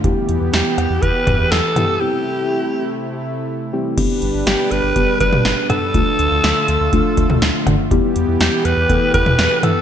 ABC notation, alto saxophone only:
X:1
M:4/4
L:1/8
Q:1/4=122
K:Gmix
V:1 name="Alto saxophone"
z2 G2 B2 A2 | G4 z4 | z2 G B2 B2 A- | A6- A z |
z2 G B2 B2 A |]